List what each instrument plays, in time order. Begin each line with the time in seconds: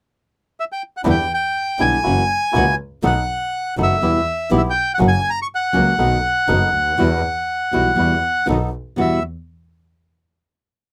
0.60 bandoneon E5
0.72 bandoneon G5
0.97 bandoneon F#5
1.03 double bass E2, nylon-string guitar B2 D3 G3 B3 E4, bandoneon D4 E4 G4
1.10 bandoneon G5
1.34 bandoneon G5
1.79 double bass B1, nylon-string guitar B2 D3 G3 B3 E4, bandoneon D4 E4 G4 G#5
2.03 double bass F#1, nylon-string guitar C#3 E3 A#3 C#4, bandoneon A#3 E4 F#4
2.07 nylon-string guitar F#4
2.52 double bass C#2, bandoneon A#3 E4 F#4
2.56 nylon-string guitar C#3 E3 A#3 C#4 F#4
3.03 double bass B1, nylon-string guitar B2 D#3 A3 B3 F#4, bandoneon B3 D#4 A4 F#5
3.77 double bass F#1, nylon-string guitar B2 D#3 A3 B3 F#4, bandoneon B3 D#4 A4
3.83 bandoneon E5
4.01 double bass E2, nylon-string guitar B2 E3 G3 B3 E4, bandoneon B3 E4 G4
4.51 double bass B1, nylon-string guitar B2 E3 G3 B3 E4, bandoneon B3 E4 G4
4.58 bandoneon E5
4.70 bandoneon G5
4.94 nylon-string guitar C#3, bandoneon F#5
4.98 double bass F#1, nylon-string guitar F#3 A#3 C#4 F#4, bandoneon A#3 C#4 F#4
5.08 bandoneon G#5
5.30 bandoneon A#5
5.42 bandoneon C#6
5.55 bandoneon F#5
5.73 double bass C#2, nylon-string guitar C#3 F#3 A#3 C#4 F#4, bandoneon A#3 C#4 F#4
5.98 double bass B1, nylon-string guitar B2 D#3 A3 B3 F#4, bandoneon B3 D#4 A4
6.47 double bass F#1, nylon-string guitar B2 D#3 A3 B3 F#4, bandoneon B3 D#4 A4
6.73 double bass D2
6.97 double bass E2, nylon-string guitar B2 E3 G3 B3 F#4, bandoneon G3 E4 F#4
7.71 double bass B1, nylon-string guitar B2 E3 G3 B3 F#4, bandoneon G3 E4 F#4
7.95 double bass E2, nylon-string guitar B2 E3 G3 B3 F#4, bandoneon G3 E4 F#4
8.46 double bass B1, nylon-string guitar B2 D#3 A3 B3 F#4, bandoneon B3 D#4 A4
8.96 nylon-string guitar E2 B2 E3 G3 B3 F#4, double bass E2, bandoneon G3 E4 F#4
9.01 bandoneon E5